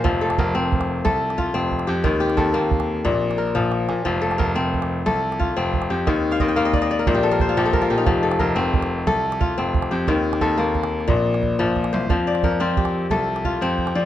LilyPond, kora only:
<<
  \new Staff \with { instrumentName = "Kora" } { \time 12/8 \key f \mixolydian \tempo 4. = 119 c''8 a'8 bes'4. r4. f'4. g'8~ | g'8 g'8 a'4. r4. bes'4. r8 | r8 a'8 bes'4. r4. f'4. g'8~ | g'8 r16 f''16 ees''16 g''16 f''16 ees''16 d''16 ees''16 d''16 bes'16 c''16 g'16 a'16 bes'16 c''16 f'16 g'16 a'16 bes'16 f'16 g'16 ees'16~ |
ees'16 r16 a'8 bes'4. r4. f'4. g'8~ | g'8 r8 a'4. r2. c''8~ | c''8 d''8 bes'8 f'8 g'4. r8 f'4. d''8 | }
  \new Staff \with { instrumentName = "Kora" } { \time 12/8 \key f \mixolydian f4 r8 c'4 r8 a'4 r8 c'4 r8 | ees4 r8 bes4 r8 bes,4 r8 f4 r8 | f4 r8 c'4 r8 a'4 r8 c'4 r8 | ees4 r8 bes4 r8 bes,4 r8 f4 r8 |
f4 r8 c'4 r8 a'4 r8 c'4 r8 | ees4 r8 bes4 r8 bes,4 r8 f4 r8 | f4 r8 c'4 r8 a'4 r8 c'4 r8 | }
>>